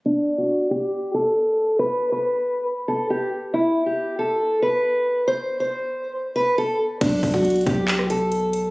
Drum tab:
CC |--------------------------------|--------------------------------|--------------------------------|--------------------------------|
HH |--------------------------------|--------------------------------|--------------------------------|--------------------------------|
CP |--------------------------------|--------------------------------|--------------------------------|--------------------------------|
SD |--------------------------------|--------------------------------|--------------------------------|--------------------------------|
BD |--------------------------------|--------------------------------|--------------------------------|--------------------------------|

CC |x-------------------------------|
HH |x---o---xxxxx---x---x---x---x---|
CP |----------------x---------------|
SD |------------------r-------------|
BD |o---o-o-----o-------------------|